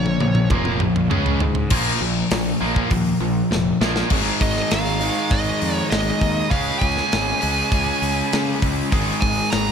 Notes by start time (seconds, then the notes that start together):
Already playing: A#1 A#2 F3 C#5
0.06 high tom
0.20 A#1 A#2 F3, high tom
0.35 mid tom
0.50 F1 A#2 F3 A#3, kick, mid tom
0.65 mid tom
0.80 A#1 A#2 F3, mid tom
0.96 mid tom
1.09 C#2 C#3 G#3 C#4, mid tom
1.26 floor tom
1.40 G#2 C#3 G#3, floor tom
1.55 floor tom
1.70 A#1 A#2 F3 A#3, kick, crash
2.01 A#1 A#2 F3
2.31 A#1 A#2 F3, snare, open hi-hat
2.61 A#1 A#2 F3 A#3
2.76 kick
2.90 D#2 A#2 F3, kick, open hi-hat
3.20 A#1 A#2 F3
3.50 F1 A#2 F3, snare
3.81 A#1 A#2 F3 A#3, snare
3.96 snare
4.10 G#1 G#2 D#3 G#3, kick, crash
4.41 G#1 D#5, kick, open hi-hat
4.57 snare
4.71 G#1 F5, snare, open hi-hat
5.01 G#2 D#3 G#3, open hi-hat
5.31 G#1 D#5, kick, open hi-hat
5.61 F2, open hi-hat
5.74 C#5
5.90 G#1 D#5, snare, open hi-hat
6.21 D#2, kick, open hi-hat
6.50 C#2 C#3 G#3 C#4 F5, kick, open hi-hat
6.79 C#2 G#5, kick, open hi-hat
6.97 snare
7.12 G#1, snare, open hi-hat
7.40 C#2 C#3 G#3 C#4, open hi-hat
7.72 C#2, kick, open hi-hat
8.02 C#2, open hi-hat
8.32 C#3, snare, open hi-hat
8.62 C#2, kick, open hi-hat
8.91 G#1 G#2 D#3 G#3, kick, open hi-hat
9.21 G#1 G#5, kick, open hi-hat
9.50 G#1 A#5, snare, open hi-hat